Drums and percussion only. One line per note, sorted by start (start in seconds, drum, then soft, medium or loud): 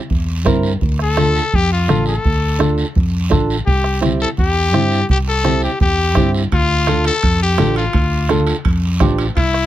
0.10 bombo low medium
0.10 high conga soft
0.10 long guiro medium
0.46 bombo low medium
0.46 bombo rim medium
0.46 high conga medium
0.46 short guiro medium
0.63 short guiro medium
0.81 bombo low medium
0.81 high conga soft
0.81 long guiro medium
0.99 bombo rim medium
1.17 bombo rim medium
1.17 high conga medium
1.17 short guiro medium
1.36 short guiro medium
1.53 bombo low medium
1.53 high conga soft
1.53 long guiro medium
1.88 bombo rim medium
1.88 high conga medium
1.88 short guiro medium
2.06 short guiro medium
2.24 bombo low medium
2.24 high conga soft
2.24 long guiro medium
2.60 bombo rim medium
2.60 high conga medium
2.60 short guiro medium
2.78 short guiro medium
2.95 bombo low medium
2.95 high conga soft
2.95 long guiro medium
3.31 bombo low medium
3.31 bombo rim medium
3.31 high conga medium
3.31 short guiro medium
3.50 short guiro medium
3.67 bombo low medium
3.67 high conga soft
3.67 long guiro medium
3.84 bombo rim medium
4.03 bombo rim medium
4.03 high conga medium
4.03 short guiro medium
4.20 short guiro medium
4.37 bombo low medium
4.37 high conga soft
4.37 long guiro medium
4.73 bombo rim medium
4.73 high conga medium
4.73 short guiro medium
4.91 short guiro medium
5.09 bombo low medium
5.09 high conga soft
5.09 long guiro medium
5.45 bombo rim medium
5.45 high conga medium
5.45 short guiro medium
5.62 short guiro medium
5.80 bombo low medium
5.80 high conga soft
5.80 long guiro medium
6.15 bombo low medium
6.15 bombo rim medium
6.15 high conga medium
6.15 short guiro medium
6.35 short guiro medium
6.52 bombo low medium
6.52 high conga soft
6.52 high timbale medium
6.52 long guiro medium
6.87 bombo rim medium
6.87 high conga medium
6.87 high timbale medium
6.87 short guiro medium
7.05 high timbale medium
7.05 short guiro medium
7.23 bombo low medium
7.23 high conga soft
7.23 high timbale medium
7.23 long guiro medium
7.58 bombo rim medium
7.58 high conga medium
7.58 high timbale medium
7.58 low timbale medium
7.58 short guiro medium
7.76 high timbale medium
7.76 short guiro medium
7.93 bombo low medium
7.93 high conga soft
7.93 high timbale medium
7.93 long guiro medium
8.29 bombo rim medium
8.29 high conga medium
8.29 high timbale medium
8.29 short guiro medium
8.47 high timbale medium
8.47 short guiro medium
8.65 bombo low medium
8.65 high conga soft
8.65 high timbale medium
8.65 long guiro medium
9.00 bombo low medium
9.00 bombo rim medium
9.00 high conga medium
9.00 high timbale medium
9.00 low timbale medium
9.00 short guiro medium
9.18 high timbale medium
9.18 short guiro medium
9.36 bombo low medium
9.36 high conga soft
9.36 high timbale medium
9.36 long guiro medium
9.54 bombo rim medium